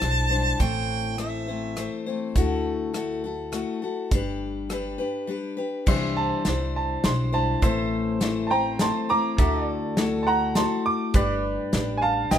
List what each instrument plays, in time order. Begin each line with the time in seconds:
Already playing: harmonica A5
0.02 upright bass B1, steel-string acoustic guitar G3 D4 E4 C5, cross-stick, closed hi-hat
0.30 steel-string acoustic guitar G3 D4 E4 C5
0.59 upright bass A1, steel-string acoustic guitar A2 E3 A3 C4 E4 C5, harmonica G5, kick, closed hi-hat
1.17 steel-string acoustic guitar A3 C4 E4 C5, harmonica E5, cross-stick, closed hi-hat
1.47 steel-string acoustic guitar A3 C4 E4 C5
1.76 steel-string acoustic guitar A3 C4 E4 C5, cross-stick, closed hi-hat
2.06 steel-string acoustic guitar A3 C4 E4 C5
2.36 upright bass D2, steel-string acoustic guitar D3 A3 E4 F#4 A4, kick, closed hi-hat
2.94 steel-string acoustic guitar A3 E4 F#4 A4, cross-stick, closed hi-hat
3.24 steel-string acoustic guitar E4 F#4 A4
3.52 steel-string acoustic guitar A3 E4 F#4 A4, cross-stick, closed hi-hat
3.82 steel-string acoustic guitar E4 F#4 A4
4.11 upright bass G1, steel-string acoustic guitar G3 D4 G4 B4, kick, closed hi-hat
4.69 steel-string acoustic guitar G3 D4 G4 B4, cross-stick, closed hi-hat
4.98 steel-string acoustic guitar D4 G4 B4
5.27 steel-string acoustic guitar G3 D4 G4 B4
5.57 steel-string acoustic guitar D4 G4 B4
5.86 upright bass C2, steel-string acoustic guitar C3 E3 G3 D4 E4 C5, pedal steel guitar C5 E5, kick, crash
6.17 upright piano A5
6.45 upright bass C2, steel-string acoustic guitar G3 D4 E4 C5, snare, closed hi-hat
6.76 upright piano A5
7.04 upright bass B1, steel-string acoustic guitar G3 D4 E4 C5, upright piano C6, snare, closed hi-hat
7.32 steel-string acoustic guitar G3 D4 E4 C5, upright piano A5
7.62 upright bass A1, steel-string acoustic guitar A2 E3 A3 C4 E4 C5, pedal steel guitar C5 E5, kick, closed hi-hat
8.20 steel-string acoustic guitar A3 C4 E4 C5, snare, closed hi-hat
8.47 steel-string acoustic guitar C5, upright piano G5 A5
8.51 steel-string acoustic guitar A3 C4 E4, upright piano A#5
8.79 steel-string acoustic guitar A3 C4 E4 C5, upright piano A5 C6, snare, closed hi-hat
9.09 steel-string acoustic guitar A3 C4 E4 C5, upright piano A#5 D6
9.38 upright bass D2, steel-string acoustic guitar D3 A3 E4 F#4 A4, pedal steel guitar A4 E5, kick, closed hi-hat
9.64 pedal steel guitar D5
9.97 steel-string acoustic guitar A3 E4 F#4 A4, snare, closed hi-hat
10.23 upright piano F#5 A5
10.28 upright piano A#5
10.55 steel-string acoustic guitar A3 E4 F#4 A4, upright piano A5 C6, snare, closed hi-hat
10.86 upright piano D6
11.14 upright bass G1, steel-string acoustic guitar G3 D4 G4 B4, pedal steel guitar B4 D5, kick, closed hi-hat
11.72 upright bass A1, steel-string acoustic guitar G3 D4 G4 B4, snare, closed hi-hat
11.97 upright piano G#5
12.02 upright piano F5 A5
12.31 upright bass B1, steel-string acoustic guitar G3 D4 G4 B4, upright piano D#5 G5, snare, closed hi-hat